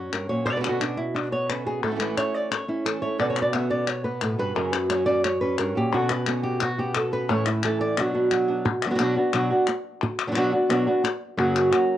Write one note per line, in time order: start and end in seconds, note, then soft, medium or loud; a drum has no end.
0.00 0.12 F#2 medium
0.00 0.49 C#4 medium
0.00 0.13 F#4 soft
0.13 0.30 G2 medium
0.13 0.29 A#4 medium
0.13 clap medium
0.29 0.47 A#2 soft
0.29 0.46 F#3 soft
0.29 0.47 A#3 soft
0.29 0.46 C#4 soft
0.29 0.46 F#4 soft
0.29 0.47 C#5 medium
0.46 0.63 B2 medium
0.46 1.83 B2 medium
0.46 0.50 D3 medium
0.46 0.50 B3 medium
0.46 0.50 C#4 medium
0.46 0.51 F#4 medium
0.46 0.58 D5 medium
0.51 0.54 D3 soft
0.51 0.55 B3 soft
0.51 0.55 C#4 soft
0.51 0.55 F#4 soft
0.55 0.59 D3 soft
0.55 0.59 B3 soft
0.55 0.59 C#4 soft
0.55 0.60 F#4 medium
0.55 0.69 B4 medium
0.60 0.63 D3 soft
0.60 0.64 B3 medium
0.60 0.64 C#4 medium
0.60 0.64 F#4 medium
0.64 0.81 B2 medium
0.64 0.81 D3 medium
0.64 0.81 B3 medium
0.64 0.81 C#4 medium
0.64 0.80 F#4 medium
0.64 clap medium
0.69 0.81 F#4 medium
0.80 1.14 B3 soft
0.80 1.14 C#4 soft
0.80 0.98 D4 medium
0.80 1.14 F#4 soft
0.80 clap medium
0.97 1.15 E4 medium
1.15 1.32 D4 medium
1.15 muted nylon-string guitar stroke soft
1.15 clap medium
1.32 1.81 B3 medium
1.32 1.49 C#5 medium
1.49 1.66 D3 soft
1.49 1.66 B3 soft
1.49 1.66 C#4 soft
1.49 1.65 F#4 soft
1.49 1.66 B4 medium
1.49 clap medium
1.66 1.83 B3 soft
1.66 1.83 C#4 soft
1.66 1.83 F#4 soft
1.66 1.83 G#4 medium
1.83 1.99 A2 medium
1.83 1.86 E3 medium
1.83 1.90 E3 soft
1.83 3.18 A3 medium
1.83 1.86 A3 medium
1.83 1.90 A3 soft
1.83 1.87 C#4 medium
1.83 1.87 E4 medium
1.83 2.00 A4 medium
1.87 1.94 E3 soft
1.87 1.95 A3 soft
1.87 1.90 C#4 soft
1.87 1.91 E4 soft
1.92 1.99 E3 soft
1.92 1.95 C#4 soft
1.92 1.95 E4 soft
1.96 1.99 A3 medium
1.96 2.00 C#4 medium
1.96 2.00 E4 medium
1.96 clap medium
2.00 2.17 A2 medium
2.00 2.17 E3 medium
2.00 2.17 A3 medium
2.00 2.17 C#4 medium
2.00 2.16 E4 medium
2.00 2.18 B4 medium
2.17 2.50 A3 soft
2.17 2.68 C#4 medium
2.17 2.51 C#4 soft
2.17 2.51 E4 soft
2.17 2.34 C#5 medium
2.17 clap medium
2.34 2.51 D5 loud
2.51 2.69 C#5 medium
2.51 muted nylon-string guitar stroke medium
2.51 clap medium
2.68 3.20 C#4 medium
2.68 2.86 E4 medium
2.85 3.02 E3 soft
2.85 3.02 A3 soft
2.85 3.01 C#4 soft
2.85 3.00 E4 soft
2.85 3.03 A4 medium
2.85 clap medium
3.02 3.18 A3 soft
3.02 3.18 C#4 soft
3.02 3.19 E4 soft
3.02 3.20 C#5 medium
3.18 3.36 B2 medium
3.18 4.56 B2 medium
3.18 3.36 D3 medium
3.18 3.35 B3 medium
3.18 3.53 B3 soft
3.18 3.35 C#4 medium
3.18 3.34 F#4 medium
3.18 5.63 F#4 soft
3.18 4.03 B4 soft
3.18 3.29 D5 loud
3.30 3.42 C#5 medium
3.35 3.52 B3 soft
3.35 3.52 C#4 soft
3.35 3.53 F#4 soft
3.35 clap medium
3.42 3.53 D5 medium
3.53 3.70 D3 soft
3.53 3.70 B3 soft
3.53 4.04 B3 medium
3.53 3.69 C#4 soft
3.53 3.68 F#4 soft
3.53 3.70 E5 loud
3.53 clap medium
3.70 3.86 B3 soft
3.70 3.87 C#4 soft
3.70 3.87 F#4 soft
3.70 3.88 D5 medium
3.87 4.05 C#5 medium
3.87 muted nylon-string guitar stroke medium
3.87 clap medium
4.04 4.54 B3 medium
4.04 4.23 B4 medium
4.21 4.38 A2 medium
4.21 4.39 A4 medium
4.21 clap medium
4.38 4.55 G2 medium
4.38 4.56 B3 soft
4.38 4.55 C#4 soft
4.38 4.55 F#4 soft
4.38 4.56 B4 loud
4.55 4.72 F#2 medium
4.55 5.59 F#2 medium
4.55 4.72 C#3 medium
4.55 4.72 F#3 medium
4.55 4.73 A#3 medium
4.55 4.72 C#4 medium
4.55 4.72 F#4 medium
4.55 4.72 A#4 medium
4.72 4.88 F#3 soft
4.72 4.89 A#3 soft
4.72 4.89 C#4 soft
4.72 4.90 F#4 soft
4.72 4.90 B4 medium
4.72 clap medium
4.89 5.06 F#3 medium
4.89 5.07 A#3 soft
4.89 5.42 C#4 medium
4.89 5.06 C#4 soft
4.89 5.06 F#4 soft
4.89 5.05 C#5 medium
4.89 clap medium
5.06 5.23 F#3 soft
5.06 5.23 A#3 soft
5.06 5.24 C#4 soft
5.06 5.24 F#4 soft
5.06 5.24 D5 loud
5.24 5.41 C#5 medium
5.24 muted nylon-string guitar stroke medium
5.24 clap medium
5.41 5.97 C#4 medium
5.41 5.58 B4 medium
5.58 5.76 G2 medium
5.58 5.76 A#4 medium
5.58 clap medium
5.75 5.94 A#2 medium
5.75 5.92 F#3 soft
5.75 5.92 A#3 soft
5.75 5.92 C#4 soft
5.75 5.92 F#4 soft
5.75 5.93 G4 loud
5.92 6.09 B2 medium
5.92 7.30 B2 medium
5.92 6.09 D3 medium
5.92 6.09 B3 medium
5.92 6.09 C#4 medium
5.92 6.09 F#4 medium
5.92 6.10 F#4 medium
6.09 6.26 B3 soft
6.09 6.27 C#4 soft
6.09 6.27 B4 loud
6.09 clap medium
6.27 6.60 D3 soft
6.27 6.60 B3 medium
6.27 6.77 B3 medium
6.27 6.60 C#4 medium
6.27 6.61 F#4 medium
6.27 clap medium
6.43 6.61 G4 loud
6.60 6.79 F#4 medium
6.60 muted nylon-string guitar stroke medium
6.60 clap medium
6.78 7.27 B3 medium
6.78 7.12 B3 soft
6.78 7.12 C#4 soft
6.78 7.11 F#4 soft
6.78 6.96 G4 medium
6.95 7.13 A4 medium
6.95 clap medium
7.12 7.29 B3 soft
7.12 7.29 C#4 soft
7.12 7.28 F#4 soft
7.12 7.30 B4 loud
7.28 7.45 A2 medium
7.28 7.95 A2 medium
7.28 7.45 E3 medium
7.28 7.46 A3 medium
7.28 7.46 C#4 medium
7.28 7.45 E4 medium
7.28 7.47 C#5 loud
7.46 7.62 A3 soft
7.46 7.63 C#4 soft
7.46 7.62 E4 medium
7.46 7.64 E4 medium
7.46 clap medium
7.63 7.97 E3 medium
7.63 7.98 E3 medium
7.63 7.97 A3 medium
7.63 7.97 C#4 soft
7.63 7.97 E4 medium
7.63 7.80 A4 medium
7.63 clap medium
7.81 8.00 D5 loud
7.97 8.98 B2 medium
7.97 8.30 F#3 medium
7.97 8.13 B3 medium
7.97 8.47 D4 medium
7.97 8.86 F#4 medium
7.97 muted nylon-string guitar stroke medium
7.97 clap medium
8.13 8.64 B3 medium
8.13 8.48 B3 soft
8.13 8.48 D4 soft
8.13 8.47 F#4 soft
8.31 8.63 F#3 medium
8.31 clap medium
8.48 8.65 B3 soft
8.48 8.63 D4 medium
8.48 8.65 D4 soft
8.48 8.65 F#4 soft
8.65 muted nylon-string guitar stroke medium
8.82 8.89 F#3 soft
8.82 clap medium
8.86 8.89 B3 medium
8.86 8.90 D4 medium
8.86 8.90 F#4 medium
8.90 8.94 F#3 medium
8.90 8.94 B3 medium
8.90 8.94 D4 medium
8.90 8.95 F#4 medium
8.95 8.99 F#3 medium
8.95 8.98 B3 medium
8.95 8.99 D4 medium
8.95 8.99 F#4 medium
8.95 clap medium
8.99 9.16 B2 medium
8.99 9.16 F#3 medium
8.99 9.16 B3 medium
8.99 9.15 D4 medium
8.99 9.15 F#4 medium
9.16 9.33 B3 soft
9.16 9.33 D4 soft
9.16 9.33 F#4 medium
9.33 9.50 B2 medium
9.33 9.50 F#3 medium
9.33 9.50 B3 medium
9.33 9.50 D4 medium
9.33 9.49 F#4 medium
9.33 clap medium
9.50 9.67 B3 soft
9.50 9.67 D4 medium
9.50 9.67 F#4 medium
9.67 muted nylon-string guitar stroke medium
9.67 clap medium
10.03 muted nylon-string guitar stroke medium
10.19 clap medium
10.27 10.30 F#3 medium
10.27 10.31 B3 soft
10.27 10.32 D4 medium
10.27 10.31 F#4 medium
10.32 10.35 F#3 medium
10.32 10.36 B3 medium
10.32 10.36 D4 medium
10.32 10.36 F#4 medium
10.32 clap medium
10.36 10.52 B2 medium
10.36 10.52 F#3 medium
10.36 10.53 B3 medium
10.36 10.52 D4 medium
10.36 10.51 F#4 medium
10.52 10.69 B3 soft
10.52 10.69 D4 soft
10.52 10.69 F#4 soft
10.69 10.86 B2 medium
10.69 10.86 F#3 medium
10.69 10.86 B3 medium
10.69 10.86 D4 medium
10.69 10.86 F#4 medium
10.69 clap medium
10.87 11.03 B3 soft
10.87 11.03 D4 medium
10.87 11.03 F#4 medium
11.04 muted nylon-string guitar stroke medium
11.04 clap medium
11.37 11.71 F#2 medium
11.37 11.71 C#3 medium
11.37 11.71 F#3 medium
11.37 11.71 A#3 medium
11.37 11.71 C#4 medium
11.37 11.70 F#4 medium
11.56 clap medium
11.71 11.97 F#3 soft
11.71 11.97 A#3 soft
11.71 11.97 C#4 soft
11.71 11.97 F#4 medium
11.71 clap medium